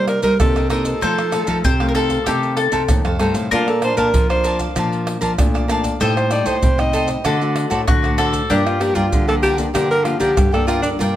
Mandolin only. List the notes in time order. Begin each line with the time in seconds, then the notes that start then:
Already playing: G4
1.02 C5
1.65 C5
1.89 A#4
1.95 A4
2.26 G4
2.57 A4
3.51 A#4
6.01 C5
7.25 A4
7.88 F#4
8.18 A4
8.50 G4